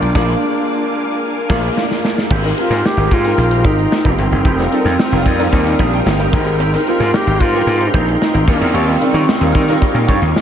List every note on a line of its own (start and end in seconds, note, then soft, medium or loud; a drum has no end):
0.00 0.12 B1 medium
0.00 0.18 G3 medium
0.00 0.15 A#3 medium
0.00 0.15 D4 medium
0.00 1.77 D4 medium
0.00 0.16 F4 medium
0.00 0.14 A#4 medium
0.00 0.16 A#4 medium
0.00 2.27 F5 medium
0.00 0.14 G5 medium
0.00 2.27 D6 medium
0.00 muted clean electric guitar stroke soft
0.00 closed hi-hat soft
0.15 0.34 A#1 loud
0.15 0.34 G#3 loud
0.15 0.34 A#3 medium
0.15 0.34 D4 medium
0.15 0.33 F4 medium
0.15 0.34 F4 loud
0.15 0.34 G#4 loud
0.15 2.28 A#4 medium
0.15 0.34 A#4 medium
0.15 0.34 D5 loud
0.15 2.28 G#5 medium
0.15 kick loud
0.15 snare medium
0.15 crash medium
1.49 1.68 A#1 loud
1.49 1.68 G#3 medium
1.49 1.68 A#3 medium
1.49 1.68 F4 medium
1.49 1.68 G#4 loud
1.49 1.68 A#4 loud
1.49 1.69 D5 loud
1.49 kick loud
1.49 snare loud
1.49 crash medium
1.56 1.72 D4 medium
1.77 snare medium
1.91 snare medium
2.04 snare loud
2.18 snare medium
2.30 2.51 G#1 medium
2.30 2.49 C4 medium
2.30 2.43 G4 medium
2.30 8.44 A#4 medium
2.30 2.42 A#4 medium
2.30 4.43 G5 medium
2.30 4.43 A#5 medium
2.30 4.44 C6 loud
2.30 kick loud
2.30 crash medium
2.44 2.56 G#3 medium
2.44 2.57 C4 medium
2.44 2.57 D#4 medium
2.44 2.57 G4 medium
2.44 2.57 A#4 medium
2.44 muted clean electric guitar stroke soft
2.44 snare soft
2.44 closed hi-hat medium
2.57 2.96 G#3 medium
2.57 2.96 C4 medium
2.57 2.96 D#4 medium
2.57 2.87 F4 medium
2.57 2.96 G4 medium
2.57 2.96 A#4 medium
2.57 muted clean electric guitar stroke soft
2.57 closed hi-hat medium
2.70 2.81 G#2 loud
2.70 2.83 C4 soft
2.70 2.84 G4 medium
2.70 2.84 A#4 medium
2.70 snare soft
2.70 closed hi-hat medium
2.85 3.15 G4 loud
2.85 muted clean electric guitar stroke soft
2.85 snare loud
2.97 3.08 G#1 loud
2.97 3.23 G#3 medium
2.97 3.24 C4 medium
2.97 3.24 D#4 medium
2.97 3.24 G4 medium
2.97 3.24 A#4 medium
2.97 muted clean electric guitar stroke medium
2.97 closed hi-hat soft
3.11 3.32 G#2 medium
3.11 3.67 F4 loud
3.11 kick medium
3.11 closed hi-hat medium
3.24 4.27 G#3 medium
3.24 4.27 C4 medium
3.24 4.27 D#4 medium
3.24 4.27 G4 medium
3.24 4.27 A#4 medium
3.24 muted clean electric guitar stroke soft
3.24 closed hi-hat medium
3.37 3.64 A#1 medium
3.37 closed hi-hat medium
3.51 muted clean electric guitar stroke soft
3.51 closed hi-hat medium
3.64 3.85 G#1 medium
3.64 3.84 C4 medium
3.64 4.13 D#4 loud
3.64 3.78 G4 medium
3.64 3.77 A#4 medium
3.64 kick medium
3.64 closed hi-hat medium
3.78 muted clean electric guitar stroke soft
3.78 closed hi-hat medium
3.91 muted clean electric guitar stroke soft
3.91 snare loud
4.05 4.16 F1 medium
4.05 4.17 C4 medium
4.05 4.17 G4 medium
4.05 4.18 A#4 medium
4.05 kick medium
4.05 closed hi-hat medium
4.12 4.21 B3 medium
4.18 4.29 G1 medium
4.18 6.34 C4 loud
4.18 muted clean electric guitar stroke soft
4.18 closed hi-hat medium
4.32 4.42 F#1 medium
4.32 muted clean electric guitar stroke medium
4.32 closed hi-hat soft
4.45 4.66 F1 loud
4.45 4.64 D#4 medium
4.45 4.58 G4 medium
4.45 4.57 A#4 loud
4.45 6.31 F5 medium
4.45 8.43 G5 medium
4.45 6.31 D#6 medium
4.45 kick loud
4.45 closed hi-hat medium
4.58 4.70 G3 medium
4.58 4.70 C4 medium
4.58 4.71 D#4 medium
4.58 4.71 F4 medium
4.58 4.72 A#4 medium
4.58 muted clean electric guitar stroke soft
4.58 snare soft
4.58 closed hi-hat medium
4.72 5.10 G3 medium
4.72 5.10 C4 medium
4.72 5.10 D#4 medium
4.72 5.11 F4 medium
4.72 4.79 A4 medium
4.72 muted clean electric guitar stroke medium
4.72 closed hi-hat medium
4.80 5.11 A#4 medium
4.85 4.96 F2 loud
4.85 4.97 D#4 medium
4.85 4.98 G4 medium
4.85 4.98 A#4 medium
4.85 snare soft
4.85 closed hi-hat medium
4.98 muted clean electric guitar stroke soft
4.98 snare loud
5.12 5.23 F1 loud
5.12 5.37 G3 medium
5.12 5.37 C4 medium
5.12 5.37 D#4 medium
5.12 5.38 F4 medium
5.12 5.38 A#4 medium
5.12 muted clean electric guitar stroke soft
5.12 closed hi-hat soft
5.26 5.47 F2 loud
5.26 kick medium
5.26 closed hi-hat medium
5.38 6.33 G3 loud
5.38 6.31 C4 loud
5.38 6.32 D#4 medium
5.38 6.33 F4 medium
5.38 6.33 A#4 loud
5.38 muted clean electric guitar stroke soft
5.38 closed hi-hat medium
5.53 5.73 D#2 loud
5.53 kick medium
5.53 closed hi-hat medium
5.66 muted clean electric guitar stroke soft
5.66 closed hi-hat medium
5.79 6.00 A#1 medium
5.79 5.98 D#4 medium
5.79 5.92 G4 medium
5.79 5.91 A#4 medium
5.79 5.92 A#5 medium
5.79 kick medium
5.79 closed hi-hat medium
5.93 6.06 G5 medium
5.93 muted clean electric guitar stroke medium
5.93 closed hi-hat medium
6.06 6.27 G1 medium
6.06 6.56 D#5 medium
6.06 muted clean electric guitar stroke soft
6.06 snare loud
6.19 6.32 D#4 medium
6.19 6.32 G4 medium
6.19 6.32 A#4 medium
6.19 closed hi-hat medium
6.33 6.75 G#1 medium
6.33 6.71 G#3 medium
6.33 6.71 C4 medium
6.33 6.71 D#4 medium
6.33 6.72 G4 medium
6.33 6.72 A#4 loud
6.33 8.45 A#5 medium
6.33 8.45 C6 loud
6.33 muted clean electric guitar stroke soft
6.33 kick loud
6.33 closed hi-hat medium
6.46 muted clean electric guitar stroke soft
6.46 closed hi-hat medium
6.60 6.79 C4 medium
6.60 6.73 G4 medium
6.60 6.72 A#4 medium
6.60 closed hi-hat medium
6.73 6.86 G#3 medium
6.73 6.86 C4 medium
6.73 6.86 D#4 medium
6.73 6.86 G4 medium
6.73 6.87 A#4 medium
6.73 muted clean electric guitar stroke soft
6.73 snare soft
6.73 closed hi-hat medium
6.86 7.25 G#3 medium
6.86 7.25 C4 medium
6.86 7.25 D#4 medium
6.86 7.17 F4 loud
6.86 7.25 G4 medium
6.86 7.26 A#4 loud
6.86 muted clean electric guitar stroke soft
6.86 closed hi-hat medium
6.99 7.10 G#2 loud
6.99 7.12 C4 soft
6.99 7.13 G4 medium
6.99 7.13 A#4 medium
6.99 snare soft
6.99 closed hi-hat medium
7.13 7.43 G4 loud
7.13 muted clean electric guitar stroke medium
7.13 snare loud
7.27 7.37 G#1 loud
7.27 7.53 G#3 medium
7.27 7.53 C4 medium
7.27 7.53 D#4 medium
7.27 7.53 G4 medium
7.27 7.53 A#4 medium
7.27 muted clean electric guitar stroke soft
7.27 closed hi-hat soft
7.41 7.61 G#2 loud
7.41 7.89 F4 loud
7.41 kick medium
7.41 closed hi-hat medium
7.53 8.48 G#3 medium
7.53 7.61 B3 medium
7.53 8.46 D#4 medium
7.53 8.48 G4 medium
7.53 8.47 A#4 loud
7.53 muted clean electric guitar stroke soft
7.53 closed hi-hat medium
7.61 8.51 C4 medium
7.67 7.88 G#2 loud
7.67 closed hi-hat medium
7.80 muted clean electric guitar stroke soft
7.80 closed hi-hat medium
7.88 7.96 D4 medium
7.93 8.15 A#1 loud
7.93 8.13 C4 medium
7.93 8.50 D#4 loud
7.93 8.07 G4 medium
7.93 8.06 A#4 medium
7.93 kick loud
7.93 closed hi-hat medium
8.07 muted clean electric guitar stroke medium
8.07 closed hi-hat medium
8.20 muted clean electric guitar stroke soft
8.20 snare loud
8.34 8.45 G#1 medium
8.34 8.54 C4 medium
8.34 8.46 G4 medium
8.34 8.47 A#4 medium
8.34 closed hi-hat medium
8.47 8.58 D#2 loud
8.47 8.86 C#3 medium
8.47 8.85 G3 medium
8.47 10.41 C4 medium
8.47 8.86 D#4 medium
8.47 8.86 F4 medium
8.47 10.41 G4 medium
8.47 8.86 A#4 medium
8.47 10.41 D#5 medium
8.47 10.41 F5 medium
8.47 10.41 C#6 loud
8.47 muted clean electric guitar stroke soft
8.47 kick loud
8.47 crash medium
8.60 8.71 E2 medium
8.60 muted clean electric guitar stroke medium
8.60 closed hi-hat soft
8.73 8.95 D#2 loud
8.73 8.93 F4 medium
8.73 8.87 G4 medium
8.73 8.86 C#5 medium
8.73 closed hi-hat medium
8.87 8.99 G3 medium
8.87 9.00 C#4 medium
8.87 8.99 D#4 medium
8.87 9.00 F4 medium
8.87 9.00 A#4 medium
8.87 muted clean electric guitar stroke soft
8.87 closed hi-hat soft
9.00 9.39 C#3 medium
9.00 9.39 G3 medium
9.00 9.39 D#4 medium
9.00 9.39 F4 medium
9.00 9.39 A#4 medium
9.00 muted clean electric guitar stroke soft
9.00 closed hi-hat medium
9.14 9.25 D#3 loud
9.14 9.26 F4 soft
9.14 9.27 G4 medium
9.14 9.27 C#5 medium
9.14 closed hi-hat soft
9.27 muted clean electric guitar stroke soft
9.27 snare loud
9.41 9.51 D#2 loud
9.41 9.67 G3 medium
9.41 9.67 C#4 medium
9.41 9.67 D#4 medium
9.41 9.67 F4 medium
9.41 9.67 A#4 medium
9.41 muted clean electric guitar stroke soft
9.41 closed hi-hat soft
9.55 9.75 D#3 loud
9.55 kick medium
9.55 snare soft
9.55 closed hi-hat medium
9.67 10.41 C#3 medium
9.67 10.41 G3 medium
9.67 10.41 D#4 medium
9.67 10.41 F4 medium
9.67 10.41 A#4 loud
9.67 muted clean electric guitar stroke medium
9.67 closed hi-hat medium
9.81 muted clean electric guitar stroke soft
9.81 kick medium
9.81 closed hi-hat medium
9.94 10.05 A#2 medium
9.94 muted clean electric guitar stroke soft
9.94 closed hi-hat medium
10.07 10.19 G2 medium
10.07 10.27 F4 medium
10.07 10.20 G4 medium
10.07 10.20 C#5 medium
10.07 kick medium
10.07 closed hi-hat medium
10.21 10.32 D#2 loud
10.21 muted clean electric guitar stroke soft
10.21 closed hi-hat medium
10.34 muted clean electric guitar stroke soft
10.34 snare medium